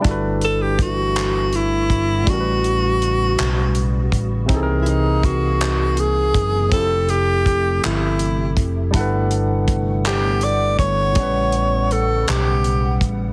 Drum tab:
HH |xxxxxx|xxxxxx|xxxxxx|xxxxxx|
CP |---x--|---x--|---x--|---x--|
BD |o-o--o|o----o|o-o--o|o-o--o|

HH |xxxxxx|xxxxxx|
CP |---x--|---x--|
BD |o-o--o|o----o|